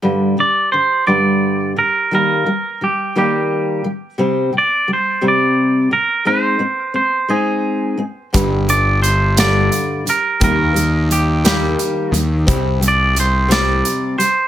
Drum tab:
HH |------|------|------|------|
SD |------|------|------|------|
BD |------|------|------|------|

HH |xxxxxx|xxxxxx|xxxxxx|
SD |---o--|---o--|---o--|
BD |o-----|o-----|o-----|